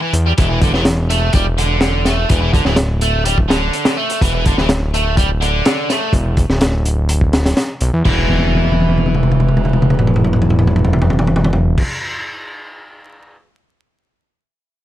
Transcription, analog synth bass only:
0.13 0.33 E2 medium
0.38 1.31 E1 loud
1.34 2.26 E1 medium
2.30 2.62 E1 loud
2.66 3.70 D1 loud
4.22 4.54 E1 loud
4.57 5.62 D1 loud
6.13 6.46 E1 loud
6.49 7.54 D1 loud
7.81 7.91 B1 medium
7.93 8.03 E2 loud
8.05 11.83 E1 loud

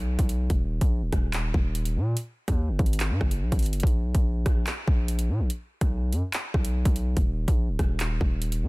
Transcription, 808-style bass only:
0.00 0.18 B1 loud
0.19 0.49 B1 loud
0.50 0.80 D#1 loud
0.81 1.04 A#1 loud
1.02 1.12 C#1 loud
1.13 1.53 D#1 loud
1.54 1.97 D#1 loud
1.96 2.16 A#2 loud
2.48 2.70 D#2 loud
2.69 2.79 F#1 loud
2.79 3.12 G#1 loud
3.10 3.20 G#2 loud
3.21 3.43 F#1 loud
3.42 3.52 B1 loud
3.52 3.74 G#1 loud
3.73 3.83 F#1 loud
3.83 4.06 A#1 loud
4.04 4.14 B1 loud
4.15 4.45 A#1 loud
4.46 4.66 A#1 loud
4.88 5.31 A#1 loud
5.29 5.41 A#2 medium
5.40 5.50 A#1 loud
5.81 6.14 B1 loud
6.13 6.22 F#2 loud
6.54 6.84 B1 loud
6.85 7.15 B1 loud
7.17 7.47 D#1 loud
7.48 7.70 A#1 loud
7.69 7.79 C#1 loud
7.79 8.19 D#1 loud
8.21 8.64 D#1 loud
8.63 8.68 A#2 medium

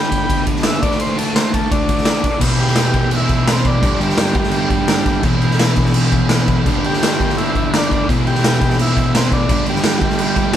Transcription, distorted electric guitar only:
0.00 0.80 G2 medium
0.00 0.80 D3 loud
0.00 0.82 G3 loud
0.82 2.23 D3 loud
0.82 2.23 A3 medium
0.82 2.24 D4 loud
2.40 3.81 E2 medium
2.40 3.82 B2 loud
2.40 3.83 E3 loud
3.82 5.22 G2 medium
3.82 5.24 D3 medium
3.82 5.24 G3 loud
5.22 6.64 E2 loud
5.22 6.65 B2 loud
5.22 6.66 E3 loud
6.66 8.07 G2 medium
6.66 8.07 D3 medium
6.66 8.08 G3 loud
8.08 9.48 E2 loud
8.08 9.49 B2 loud
8.08 9.50 E3 loud
9.49 10.56 G2 loud
9.49 10.56 D3 loud
9.49 10.56 G3 loud

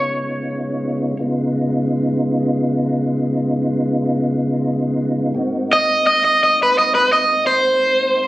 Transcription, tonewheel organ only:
0.00 1.14 C#3 medium
0.00 1.15 G#3 medium
0.00 1.14 B3 medium
0.00 1.14 D#4 medium
0.00 1.14 F4 medium
1.19 5.32 C#3 medium
1.19 5.32 G#3 medium
1.19 5.32 B3 medium
1.19 5.33 D#4 medium
1.19 5.32 F4 medium
5.34 8.27 G#2 medium
5.34 8.27 A#3 medium
5.34 8.27 C4 medium
5.34 8.27 D#4 medium
5.34 8.27 F#4 medium

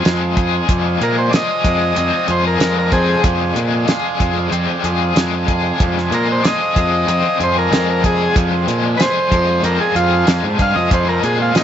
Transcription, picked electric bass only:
0.05 0.59 F2 medium
0.69 0.96 F2 medium
1.01 1.28 A#2 medium
1.65 1.92 F2 medium
1.97 2.10 F2 medium
2.28 2.56 F2 medium
2.60 3.14 F2 medium
3.24 3.51 F2 medium
3.56 3.83 A#2 loud
4.20 4.47 F2 medium
4.51 4.65 F2 medium
4.84 5.11 F2 medium
5.16 5.70 F2 medium
5.80 6.07 F2 medium
6.11 6.39 A#2 loud
6.76 7.03 F2 loud
7.07 7.21 F2 medium
7.40 7.67 F2 medium
7.71 8.26 F2 medium
8.36 8.63 F2 medium
8.67 8.95 A#2 loud
9.31 9.59 F2 medium
9.63 9.77 F2 loud
9.95 10.23 F2 medium
10.27 10.41 F2 medium
10.44 10.58 G#2 medium
10.59 10.74 G2 medium
10.75 10.90 F2 medium
10.91 11.18 F2 medium
11.23 11.51 A#2 loud

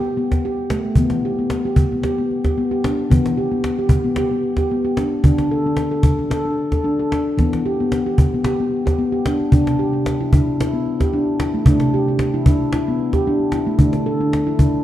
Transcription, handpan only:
0.00 0.93 C4 medium
0.00 0.17 G4 medium
0.17 0.44 B3 medium
0.45 0.71 G4 medium
0.71 0.97 A3 medium
0.96 3.06 E3 medium
0.96 1.24 B3 medium
1.25 1.38 G4 medium
1.39 1.65 B3 medium
1.65 1.92 G4 medium
1.92 2.04 B3 medium
2.04 2.18 G4 medium
2.18 2.45 B3 medium
2.45 2.57 G4 medium
2.58 2.71 B3 medium
2.71 2.84 G4 medium
2.84 3.11 D4 medium
3.10 5.20 E3 medium
3.10 3.37 B3 medium
3.38 3.51 G4 medium
3.52 3.78 B3 medium
3.79 4.05 G4 medium
4.04 4.17 B3 medium
4.18 4.32 G4 medium
4.31 4.58 B3 medium
4.58 4.71 G4 medium
4.71 4.85 B3 medium
4.85 4.97 G4 medium
4.98 5.24 D4 medium
5.24 7.34 D3 medium
5.24 5.51 D4 medium
5.51 5.65 A4 medium
5.66 5.92 D4 medium
5.91 6.18 A4 medium
6.19 6.31 D4 medium
6.31 6.45 A4 medium
6.45 6.72 D4 medium
6.72 6.85 A4 medium
6.84 6.98 D4 medium
6.99 7.12 A4 medium
7.12 7.38 D4 medium
7.37 9.48 E3 medium
7.37 7.65 B3 medium
7.66 7.79 G4 medium
7.80 8.06 B3 medium
8.06 8.33 G4 medium
8.34 8.46 B3 medium
8.46 8.59 G4 medium
8.60 8.86 B3 medium
8.86 8.98 G4 medium
8.99 9.12 B3 medium
9.12 9.25 G4 medium
9.26 9.52 D4 medium
9.52 11.62 C3 medium
9.52 9.79 D4 medium
9.79 9.93 G4 medium
9.93 10.20 D4 medium
10.21 10.33 E4 medium
10.34 10.60 D4 medium
10.61 10.74 E4 medium
10.73 11.00 B3 medium
11.00 11.13 G4 medium
11.14 11.40 D4 medium
11.40 11.54 E4 medium
11.54 11.66 A3 medium
11.65 13.75 C3 medium
11.65 11.93 D4 medium
11.94 12.07 G4 medium
12.08 12.34 D4 medium
12.34 12.46 E4 medium
12.47 12.73 D4 medium
12.74 12.87 E4 medium
12.88 13.14 B3 medium
13.14 13.26 G4 medium
13.27 13.53 D4 medium
13.54 13.67 E4 medium
13.67 13.79 A3 medium
13.79 14.84 D3 medium
13.79 14.06 D4 medium
14.06 14.20 A4 medium
14.20 14.47 D4 medium
14.47 14.60 E4 medium
14.60 14.84 D4 medium

